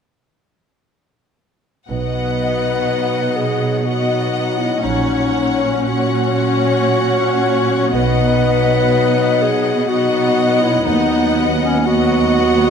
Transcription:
1.90 B1 B2 F#3 B3 D#4 B4 D#5 F#5
3.36 G#4
3.84 F#3 B3 D#4 F#4 D#5 F#5
4.58 E4
4.82 A#1 A#2 F#3 C#4 D#4 C#5 F#5
5.62 C#4
5.88 F#3 C#4 F#4 C#5 F#5
7.94 B1 B2 F#3 B3 D#4 B4 D#5 F#5
9.42 G#4
9.89 F#3 B3 D#4 F#4 D#5 F#5
10.61 E4
10.85 D#2 F#3 B3 D#4 D#5 F#5
11.62 C#4
11.86 F#3 B3 F#4 D#5 F#5

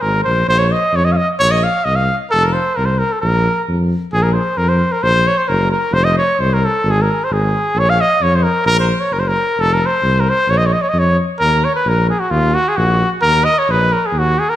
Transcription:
0.01 G#1 A#4
0.24 A#1 C5
0.48 A#1 C5
0.59 C#5
0.72 D#5
0.93 F2 C#5
1.05 D#5
1.12 F5
1.17 D#5
1.39 A#1 C#5
1.51 D#5
1.63 F5
1.84 C2 D#5
1.96 F5
2.29 F1 A4 A#4
2.42 A#4
2.53 C5
2.76 C2 A#4
2.86 C5
2.99 A#4
3.12 A4
3.21 A#1 A#4
3.68 F2
4.12 A#1 G#4
4.23 A#4
4.34 C5
4.57 F2 A#4
4.69 C5
4.92 A#4
5.03 A#1 C5
5.28 C#5
5.37 C5
5.48 F#1 A#4
5.71 A#4
5.91 F1 C5
6.04 D#5
6.18 C#5
6.39 C2 C5
6.54 A#4
6.65 A4
6.84 G#1
6.91 G#4
7.02 A#4
7.24 C5
7.30 G#1 G#4
7.74 A#1
7.79 C#5
7.90 F5
8.01 D#5
8.21 F2 C#5
8.36 C5
8.43 A#4
8.65 A#1 A#4
8.80 C5
9.00 C#5
9.11 F#1 A#4
9.20 C5
9.28 A#4
9.58 F1 A4
9.74 A#4
9.86 C5
10.03 C2
10.20 A#4
10.29 C5
10.48 A#1 C#5
10.58 D#5
10.67 C#5
10.73 D#5
10.82 C#5
10.89 F2 D#5
10.99 C#5
11.40 D#2 A#4
11.64 C#5
11.76 B4
11.85 A#1 A#4
12.10 G#4
12.20 F#4
12.30 D#2 F4
12.54 F#4
12.68 G#4
12.77 A#1 F#4
13.22 D#2 A#4
13.45 D#5
13.59 C#5
13.68 A#1 B4
13.93 A#4
14.06 G#4
14.12 D#2
14.19 F#4
14.39 G#4
14.50 A#4

